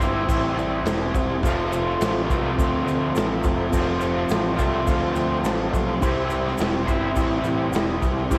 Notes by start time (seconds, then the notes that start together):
0.00 G1 C4 E4 G4 C5, kick, shaker
0.04 C3 G3
0.28 A1 E4 G4 C5, kick, crash, shaker
0.56 A1 E4 G4 D5, crash, shaker
0.83 E1 E4 G4 C5, snare, crash, shaker
1.14 E1 E4 G4 C5, kick, crash, shaker
1.43 F1 F2 C3 F3 A3 F4 A4 C5, kick, crash, shaker
1.48 C4 F4
1.71 F4 A4 C5, crash, shaker
1.97 A1 F4 A4 C5, crash
2.01 snare, shaker
2.27 C2 C4 F4 A4 B4, kick, crash, shaker
2.31 F2 C3 F3 A3
2.55 D2 F4 A4 C5, kick, crash
2.60 shaker
2.85 D2 F4 A4 C5, crash, shaker
3.14 A1 F4 A4 B4, snare, crash, shaker
3.43 F1 F4 A4 C5, kick, crash, shaker
3.70 F1 F2 C3 F3 F4 A4 C5, kick, crash, shaker
3.74 A3 C4 F4
4.01 F4 A4 C5, crash, shaker
4.29 A1 F4 A4, snare, crash, shaker
4.33 C5
4.57 C2 A3 C4 F4 A4 D5 E5, kick, crash, shaker
4.61 F2 C3 F3
4.86 D2 F4 A4 C5 F5, kick, crash, shaker
5.15 D2 F4 A4 C5 G5, crash, shaker
5.43 A1 F4 A4 C5 A5, snare, crash, shaker
5.71 B1 F4 A4 C5 C6, kick, crash, shaker
6.00 C2 C3 G3 C4 E4 G4 C5, kick, crash, shaker
6.05 G4 C5
6.30 E4 G4 C5, crash, shaker
6.48 snare
6.58 E1 E4 G4, snare, crash, shaker
6.62 C5
6.87 G1 C4 E4 G4 C5, kick, crash, shaker
6.92 C3 G3
7.16 A1 E4 G4 C5, kick, crash, shaker
7.44 A1 E4 G4 C5, crash, shaker
7.71 E1 E4 G4, crash, shaker
7.76 D5, snare
8.01 C2 E4 G4 C5, kick, crash, shaker
8.30 C2 C3 G3 C4 E4 G4 C5, kick, crash, shaker